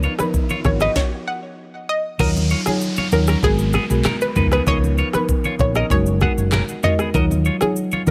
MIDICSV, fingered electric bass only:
0, 0, Header, 1, 2, 480
1, 0, Start_track
1, 0, Key_signature, -6, "minor"
1, 0, Tempo, 618557
1, 1703, Time_signature, 4, 2, 24, 8
1, 6292, End_track
2, 0, Start_track
2, 0, Title_t, "Fingered electric bass"
2, 0, Program_c, 0, 33
2, 501, Note_on_c, 0, 32, 91
2, 671, Note_off_c, 0, 32, 0
2, 1704, Note_on_c, 0, 39, 110
2, 1961, Note_off_c, 0, 39, 0
2, 2422, Note_on_c, 0, 39, 94
2, 2592, Note_off_c, 0, 39, 0
2, 2660, Note_on_c, 0, 32, 106
2, 2918, Note_off_c, 0, 32, 0
2, 3028, Note_on_c, 0, 35, 93
2, 3109, Note_off_c, 0, 35, 0
2, 3383, Note_on_c, 0, 37, 104
2, 3552, Note_off_c, 0, 37, 0
2, 3623, Note_on_c, 0, 37, 109
2, 3880, Note_off_c, 0, 37, 0
2, 4341, Note_on_c, 0, 34, 88
2, 4511, Note_off_c, 0, 34, 0
2, 4580, Note_on_c, 0, 30, 109
2, 4838, Note_off_c, 0, 30, 0
2, 4948, Note_on_c, 0, 30, 86
2, 5117, Note_off_c, 0, 30, 0
2, 5543, Note_on_c, 0, 39, 111
2, 5800, Note_off_c, 0, 39, 0
2, 6262, Note_on_c, 0, 39, 90
2, 6292, Note_off_c, 0, 39, 0
2, 6292, End_track
0, 0, End_of_file